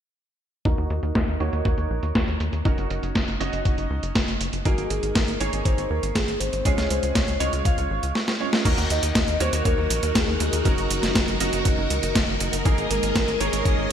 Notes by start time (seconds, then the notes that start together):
0.65 D#2 A#3 D#4 F#4 A#4, kick, closed hi-hat
0.78 D#2, closed hi-hat
0.90 D#2, closed hi-hat
1.03 D#2, closed hi-hat
1.15 D#2, kick, snare, closed hi-hat
1.28 D#2, closed hi-hat
1.40 D#2 A#3 D#4 F#4 C#5, closed hi-hat
1.53 D#2, closed hi-hat
1.65 D#2, kick, closed hi-hat
1.78 D#2, closed hi-hat
1.90 A#1
2.03 D#2, closed hi-hat
2.15 D#2, kick, snare, closed hi-hat
2.28 D#2, closed hi-hat
2.40 D#2, closed hi-hat
2.53 D#2, closed hi-hat
2.65 F#1 C#4 D#4 F#4 A#4, kick, closed hi-hat
2.78 F#1, closed hi-hat
2.90 F#1, closed hi-hat
3.03 F#1, closed hi-hat
3.15 F#1, kick, snare, closed hi-hat
3.28 F#1, closed hi-hat
3.40 F#1 C#4 D#4 F#4 D#5, closed hi-hat
3.53 F#1, closed hi-hat
3.65 F#1, kick, closed hi-hat
3.78 F#1, closed hi-hat
3.90 C#2
4.03 F#1, closed hi-hat
4.15 F#1, kick, snare, closed hi-hat
4.28 F#1, closed hi-hat
4.40 F#1, closed hi-hat
4.53 F#1, closed hi-hat
4.65 G#1 A#3 D#4 F#4 G#4 A#4, kick, closed hi-hat
4.78 G#1, closed hi-hat
4.90 G#1 G#4, closed hi-hat
5.03 G#1, closed hi-hat
5.15 G#1 A#4, kick, snare, closed hi-hat
5.28 G#1, closed hi-hat
5.40 G#1 A#3 D#4 G#4 C#5, closed hi-hat
5.53 G#1, closed hi-hat
5.65 G#1 C5, kick, closed hi-hat
5.78 G#1, closed hi-hat
5.90 D#2 A#4
6.03 G#1, closed hi-hat
6.15 G#1 G#4, kick, snare, closed hi-hat
6.28 G#1, closed hi-hat
6.40 G#1 C5, closed hi-hat
6.53 G#1, closed hi-hat
6.65 C#2 G#3 C#4 F4 G#4 C#5, kick, closed hi-hat
6.78 C#2, snare, closed hi-hat
6.90 C#2 C5, closed hi-hat
7.03 C#2, closed hi-hat
7.15 C#2 C#5, kick, snare, closed hi-hat
7.28 C#2, closed hi-hat
7.40 C#2 G#3 C#4 F4 C#5 D#5, closed hi-hat
7.53 C#2, closed hi-hat
7.65 C#2 F5, kick, closed hi-hat
7.78 C#2, closed hi-hat
7.90 G#1
8.03 C#2, closed hi-hat
8.15 snare
8.28 snare
8.40 G#3 C#4 F4 C#5
8.53 snare
8.65 D#2 A#3 D#4 F#4 A#4, kick, closed hi-hat, crash
8.78 D#2, closed hi-hat
8.90 D#2 D#5, closed hi-hat
9.03 D#2, closed hi-hat
9.15 D#2, kick, snare, closed hi-hat
9.28 D#2, closed hi-hat
9.40 D#2 A#3 D#4 F#4 C5 C#5, closed hi-hat
9.53 D#2, closed hi-hat
9.65 D#2 A#4, kick, closed hi-hat
9.78 D#2
9.90 A#1, closed hi-hat
10.03 D#2, closed hi-hat
10.15 D#2 G#4, kick, snare, closed hi-hat
10.28 D#2
10.40 D#2, closed hi-hat
10.53 D#2, closed hi-hat
10.65 F#1 C#4 D#4 F#4 A#4, kick, closed hi-hat
10.78 F#1, closed hi-hat
10.90 F#1, closed hi-hat
11.03 F#1, snare, closed hi-hat
11.15 F#1, kick, snare, closed hi-hat
11.28 F#1, closed hi-hat
11.40 F#1 C#4 D#4 F#4 D#5, closed hi-hat
11.53 F#1, closed hi-hat
11.65 F#1, kick, closed hi-hat
11.78 F#1
11.90 C#2, closed hi-hat
12.03 F#1, closed hi-hat
12.15 F#1, kick, snare, closed hi-hat
12.28 F#1
12.40 F#1, closed hi-hat
12.53 F#1, closed hi-hat
12.65 G#1 G#3 A#3 D#4 G#4 A#4 D#5, kick, closed hi-hat
12.78 G#1, closed hi-hat
12.90 G#1 A#4, closed hi-hat
13.03 G#1, closed hi-hat
13.15 G#1, kick, snare, closed hi-hat
13.28 G#1, closed hi-hat
13.40 G#1 A#3 D#4 G#4 C#5, closed hi-hat
13.53 G#1, closed hi-hat
13.65 G#1, kick, closed hi-hat
13.78 G#1